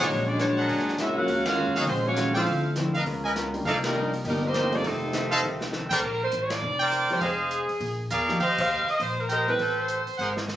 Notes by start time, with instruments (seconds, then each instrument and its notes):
0.00 trombone section F#3 G#3 C#4, saxophone section G#3 D4 F#4 C#5, grand piano E4
0.09 upright bass A#1, hollow-body jazz guitar A#2 G#3 D4 F#4, kick, open hi-hat
0.28 trombone section F#3 G#3 D4, saxophone section G#3 C#4 F#4 D5
0.39 hollow-body jazz guitar A#2 G#3 D4 F#4, trombone section F#3 G#3 D4, saxophone section G#3 D4 F#4 C#5, snare, closed hi-hat
0.57 trumpet section D4 G#4 A#4 F#5
0.68 upright bass F#1, hollow-body jazz guitar A#2 G#3 D4 F#4, kick, open hi-hat
0.79 snare
0.88 snare
0.98 hollow-body jazz guitar A#2 G#3 D4 F#4, saxophone section C#4 F#4 A#4 E5, trombone section E4, snare, closed hi-hat
1.16 grand piano F#3 G#3 A#3 C#4 F4, trombone section A#3 C#4 F#4, saxophone section C#4 F4 A#4 F#5, muted upright bass stroke
1.27 upright bass D#2, hollow-body jazz guitar D#3 G#3 C#4 F#4, kick, open hi-hat
1.46 trombone section A#3 C#4 F4, saxophone section C#4 F#4 A#4 F5, snare, ride
1.57 hollow-body jazz guitar D#3 G#3 C#4 F#4
1.67 upright bass F2
1.75 upright bass D2, trombone section F#3 A#3 D#4, saxophone section C#4 F#4 A#4 D#5, trumpet section F#4 G#4 C#5 F5, open hi-hat
1.86 upright bass A#1, hollow-body jazz guitar D#3 G#3 C#4 F#4, saxophone section G#3 C#4 F4 C5, trombone section C4, kick, open hi-hat
2.05 trombone section F#3 A#3 C#4, saxophone section A#3 F4 F#4 C#5
2.16 hollow-body jazz guitar D#3 G#3 C#4 F#4, snare, closed hi-hat
2.34 grand piano F3 A3 C4 D4 E4, trombone section A3 C4 F4, saxophone section C4 A4 E5 F5, trumpet section F4 C5 D5 G5, open hi-hat
2.46 upright bass D2, hollow-body jazz guitar D3 F3 C4 E4, kick, open hi-hat
2.76 hollow-body jazz guitar D3 F3 C4 E4, grand piano F3 A3 C4 D4 E4, snare, closed hi-hat
2.94 trumpet section A#4 B4 D#5 F5, open hi-hat
3.05 upright bass C#2, hollow-body jazz guitar C#3 B3 F4 A#4, kick, open hi-hat
3.25 trumpet section A#4 B4 D#5 G#5
3.35 hollow-body jazz guitar C#3 B3 F4 A#4, snare, closed hi-hat
3.53 grand piano G3 A#3 D4 D#4 F4, open hi-hat
3.65 upright bass C2, hollow-body jazz guitar C3 F3 A#3 D#4, saxophone section F3 A#3 D4 A4, trombone section A3, trumpet section A#4 D5 D#5 F5, kick, open hi-hat
3.84 trombone section D#3 G3 A#3, saxophone section G3 D4 D#4 A#4, snare, ride
3.94 hollow-body jazz guitar C3 F3 A#3 D#4, grand piano G3 A#3 D4 D#4 F4
4.13 open hi-hat
4.25 upright bass G1, hollow-body jazz guitar C3 F3 A#3 D#4, trombone section D#3 G3 A#3, saxophone section D4 D#4, kick, open hi-hat
4.29 saxophone section G3 A#4
4.43 trombone section D#3 G3 C4, saxophone section A#3 D#4 G4 C5
4.54 hollow-body jazz guitar C3 F3 A#3 D#4, snare, closed hi-hat
4.72 grand piano G3 A3 C4 D#4 F4, trombone section G3 A#3 D4, saxophone section A#3 D#4 G4 D5, open hi-hat
4.84 upright bass F1, hollow-body jazz guitar F2 D#3 A3 C4, trombone section C3 D#3 A3, saxophone section F3 C4 D#4 A4, kick, open hi-hat
5.13 hollow-body jazz guitar F2 D#3 A3 C4, snare, closed hi-hat
5.31 trumpet section A4 C5 D#5 F5, open hi-hat
5.42 upright bass C2, hollow-body jazz guitar F2 D#3 A3 C4
5.61 snare
5.72 hollow-body jazz guitar F2 D#3 A3 C4, snare
5.90 saxophone section A4, trumpet section A#4 C5 D5 G5, kick, crash
6.02 upright bass A#1, saxophone section A#4, kick
6.23 saxophone section C5
6.32 upright bass A1, closed hi-hat
6.43 saxophone section C#5
6.50 saxophone section D5, snare, ride
6.62 upright bass F1
6.79 trumpet section A#4 C5 D5 G5
6.92 cross-stick, closed hi-hat
7.10 grand piano F3 G#3 C4 D#4 G4, saxophone section C5, muted upright bass stroke, open hi-hat
7.21 upright bass F1, trumpet section G#4 C5 D#5 F5, saxophone section G#4, kick, open hi-hat
7.51 closed hi-hat
7.69 muted upright bass stroke, open hi-hat
7.80 upright bass A#1, kick, open hi-hat
8.10 upright bass E2, trumpet section G#4 A#4 D5 F5, cross-stick, closed hi-hat
8.28 grand piano F3 A#3 C4 D#4 G4, snare
8.40 upright bass D#2, trumpet section G4 C5 D#5 F5, saxophone section C5, kick, open hi-hat
8.58 saxophone section F5, kick, crash
8.88 saxophone section D#5, muted upright bass stroke, open hi-hat
9.00 upright bass A#1, saxophone section C5, kick, open hi-hat
9.20 saxophone section A#4
9.29 trumpet section G4 C5 D#5 G5, saxophone section A#4, cross-stick, closed hi-hat
9.47 grand piano G3 B3 C4 E4 A4, saxophone section B4, open hi-hat
9.59 upright bass A1, trumpet section A4 B4 C5 G5, kick, open hi-hat
9.79 saxophone section C5
9.88 closed hi-hat
10.07 muted upright bass stroke, open hi-hat
10.18 upright bass G#1, trumpet section G#4 A#4 C5 F#5
10.37 snare
10.48 snare